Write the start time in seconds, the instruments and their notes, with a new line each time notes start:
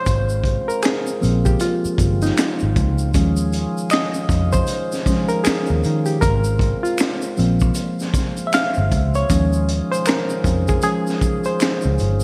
Already playing: reed electric piano C5
0.06 picked electric bass G#1, tonewheel organ G#3 C4 F4, kick, closed hi-hat, shaker
0.29 shaker
0.44 kick, closed hi-hat
0.68 reed electric piano A#4, shaker
0.83 reed electric piano G#4, finger snap, closed hi-hat, shaker
0.85 finger snap, snare
1.07 shaker
1.21 picked electric bass A#1, reed electric piano F3 A#3 C4, closed hi-hat, shaker
1.45 reed electric piano G4, kick, closed hi-hat, shaker
1.60 reed electric piano F4, closed hi-hat, shaker
1.85 muted picked electric bass stroke, shaker
1.98 picked electric bass G1, kick, closed hi-hat, shaker
2.22 reed electric piano D#4, snare, closed hi-hat, shaker
2.37 finger snap, snare, closed hi-hat, shaker
2.59 picked electric bass G#1, shaker
2.76 picked electric bass C#2, kick, closed hi-hat, shaker
2.98 shaker
3.14 picked electric bass D#2, tonewheel organ D#3 C#4 F4 G#4, reed electric piano F3 G#3 C#4, kick, closed hi-hat, shaker
3.37 shaker
3.52 closed hi-hat, shaker
3.77 shaker
3.90 reed electric piano D#5, finger snap, closed hi-hat, shaker
3.93 finger snap, snare
4.14 shaker
4.29 picked electric bass F2, kick, closed hi-hat, shaker
4.52 reed electric piano C5, kick, shaker
4.67 closed hi-hat, shaker
4.92 snare, shaker
5.06 reed electric piano F3 G#3 C#4, kick, closed hi-hat, shaker
5.10 snare
5.29 reed electric piano A#4, closed hi-hat, shaker
5.44 reed electric piano G#4, finger snap, closed hi-hat, shaker
5.47 finger snap, muted picked electric bass stroke, snare
5.66 shaker
5.70 picked electric bass D#2
5.84 picked electric bass D#3, closed hi-hat, shaker
6.06 reed electric piano G4, closed hi-hat, shaker
6.21 picked electric bass G#1, tonewheel organ G#3 C4 F4, reed electric piano A#4, kick, closed hi-hat, shaker
6.44 shaker
6.59 kick, closed hi-hat
6.83 reed electric piano F4, closed hi-hat, shaker
6.98 finger snap, closed hi-hat, shaker
7.00 finger snap, snare
7.22 shaker
7.37 picked electric bass A#1, reed electric piano F3 A#3 C4, closed hi-hat, shaker
7.60 kick, shaker
7.75 closed hi-hat, shaker
7.99 snare, shaker
8.14 kick, closed hi-hat, shaker
8.18 snare
8.37 closed hi-hat, shaker
8.47 reed electric piano E5
8.53 reed electric piano F5, finger snap, snare, closed hi-hat, shaker
8.74 picked electric bass G1, shaker
8.92 picked electric bass C#2, kick, closed hi-hat, shaker
9.14 reed electric piano C#5, closed hi-hat, shaker
9.29 picked electric bass D#2, tonewheel organ D#3 C#4 G#4, reed electric piano F3 G#3 C#4, kick, closed hi-hat, shaker
9.53 shaker
9.69 closed hi-hat
9.92 reed electric piano C5, closed hi-hat, shaker
10.06 reed electric piano A#4, finger snap, closed hi-hat, shaker
10.09 finger snap, snare
10.29 shaker
10.44 picked electric bass F2, kick, closed hi-hat, shaker
10.68 reed electric piano G#4, kick, closed hi-hat, shaker
10.82 reed electric piano F3 G#3 C#4 G#4, closed hi-hat, shaker
11.07 snare, shaker
11.21 kick, closed hi-hat, shaker
11.44 reed electric piano C5, closed hi-hat, shaker
11.60 finger snap, closed hi-hat, shaker
11.62 finger snap, snare
11.81 shaker
11.85 picked electric bass C#2
11.98 picked electric bass G1, closed hi-hat, shaker
12.20 shaker